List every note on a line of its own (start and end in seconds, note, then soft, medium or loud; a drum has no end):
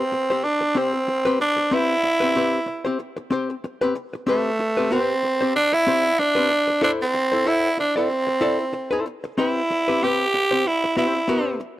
0.00 0.46 C4 medium
0.12 muted hollow-body jazz guitar stroke soft
0.30 0.43 C4 medium
0.30 0.44 G4 medium
0.30 0.45 C5 medium
0.44 0.80 D4 loud
0.44 muted hollow-body jazz guitar stroke soft
0.61 muted hollow-body jazz guitar stroke medium
0.75 0.98 C4 medium
0.75 1.41 C4 medium
0.75 0.94 G4 medium
0.75 0.93 C5 medium
0.93 muted hollow-body jazz guitar stroke soft
1.08 muted hollow-body jazz guitar stroke soft
1.25 1.38 C4 medium
1.25 1.39 G4 medium
1.25 1.40 B4 medium
1.40 1.75 D4 loud
1.40 muted hollow-body jazz guitar stroke soft
1.57 muted hollow-body jazz guitar stroke soft
1.71 1.94 C4 medium
1.71 3.01 E4 loud
1.71 1.95 G4 medium
1.71 1.95 B4 medium
2.03 muted hollow-body jazz guitar stroke soft
2.20 2.34 C4 medium
2.20 2.35 G4 medium
2.20 2.36 B4 medium
2.35 2.58 C4 medium
2.35 2.58 G4 medium
2.35 2.59 B4 medium
2.66 muted hollow-body jazz guitar stroke soft
2.85 2.98 C4 medium
2.85 2.99 G4 medium
2.85 3.00 C5 medium
2.99 muted hollow-body jazz guitar stroke soft
3.17 muted hollow-body jazz guitar stroke soft
3.31 3.53 C4 medium
3.31 3.50 G4 medium
3.31 3.49 C5 medium
3.50 muted hollow-body jazz guitar stroke medium
3.64 muted hollow-body jazz guitar stroke soft
3.81 3.94 C4 medium
3.81 3.95 G4 medium
3.81 3.95 B4 medium
3.95 muted hollow-body jazz guitar stroke medium
4.13 muted hollow-body jazz guitar stroke soft
4.27 4.94 A3 medium
4.27 4.49 C4 medium
4.27 4.50 G4 medium
4.27 4.51 B4 loud
4.59 muted hollow-body jazz guitar stroke soft
4.77 4.89 C4 medium
4.77 4.90 G4 medium
4.77 4.91 B4 medium
4.90 5.13 C4 medium
4.90 5.55 C4 loud
4.90 5.14 G4 medium
4.90 5.14 B4 medium
5.23 muted hollow-body jazz guitar stroke soft
5.41 5.56 C4 medium
5.41 5.56 G4 medium
5.41 5.55 C5 medium
5.56 5.75 D4 loud
5.73 6.21 E4 loud
5.73 muted hollow-body jazz guitar stroke soft
5.87 6.09 C4 medium
5.87 6.06 G4 medium
5.87 6.05 C5 medium
6.05 muted hollow-body jazz guitar stroke soft
6.19 6.83 D4 loud
6.19 muted hollow-body jazz guitar stroke soft
6.35 6.49 C4 medium
6.35 6.50 G4 medium
6.35 6.51 B4 medium
6.50 muted hollow-body jazz guitar stroke soft
6.68 muted hollow-body jazz guitar stroke medium
6.82 6.92 D4 loud
6.82 7.04 E4 medium
6.82 7.05 A4 medium
6.82 7.05 C5 loud
7.02 7.50 C4 loud
7.14 muted hollow-body jazz guitar stroke soft
7.32 7.44 E4 soft
7.32 7.45 A4 medium
7.32 7.46 C5 medium
7.45 7.68 E4 medium
7.45 7.79 E4 loud
7.45 7.69 A4 medium
7.45 7.69 C5 medium
7.78 7.96 D4 medium
7.78 muted hollow-body jazz guitar stroke soft
7.96 9.02 C4 medium
7.96 8.09 E4 medium
7.96 8.09 A4 medium
7.96 8.10 D5 medium
8.10 muted hollow-body jazz guitar stroke soft
8.27 muted hollow-body jazz guitar stroke soft
8.41 8.64 E4 medium
8.41 8.60 A4 medium
8.41 8.58 D5 medium
8.59 muted hollow-body jazz guitar stroke soft
8.73 muted hollow-body jazz guitar stroke soft
8.91 9.05 E4 medium
8.91 9.05 A4 medium
8.91 9.06 C5 medium
9.06 muted hollow-body jazz guitar stroke soft
9.24 muted hollow-body jazz guitar stroke soft
9.38 9.60 C4 medium
9.38 10.05 E4 medium
9.38 9.61 G4 medium
9.38 9.61 B4 medium
9.70 muted hollow-body jazz guitar stroke soft
9.88 10.01 C4 medium
9.88 10.03 G4 medium
9.88 10.02 B4 medium
10.03 10.24 C4 medium
10.03 10.69 G4 loud
10.03 10.25 G4 medium
10.03 10.25 B4 medium
10.34 muted hollow-body jazz guitar stroke soft
10.51 10.65 C4 medium
10.51 10.65 G4 medium
10.51 10.66 C5 medium
10.66 10.98 E4 medium
10.66 muted hollow-body jazz guitar stroke soft
10.84 muted hollow-body jazz guitar stroke soft
10.97 11.19 C4 medium
10.97 11.58 E4 medium
10.97 11.15 G4 medium
10.97 11.15 C5 medium
11.15 muted hollow-body jazz guitar stroke soft
11.28 11.41 B3 medium
11.28 11.42 F#4 medium
11.28 11.42 A#4 medium
11.41 11.58 C4 medium
11.41 11.59 G4 medium
11.41 11.59 B4 medium
11.60 muted hollow-body jazz guitar stroke soft